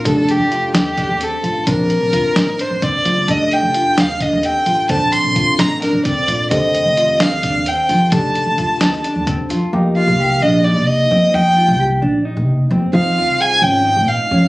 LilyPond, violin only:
\new Staff \with { instrumentName = "Violin" } { \time 7/8 \key f \mixolydian \tempo 4 = 130 a'8 g'4 g'4 a'4 | bes'2 c''8 d''4 | ees''8 g''4 f''8 ees''8 g''4 | a''8 c'''4 bes''8 bes'8 d''4 |
ees''4. f''4 g''4 | a''2~ a''8 r4 | r8 f''4 ees''8 d''8 ees''4 | g''4 r2 r8 |
f''4 aes''8 g''4 f''4 | }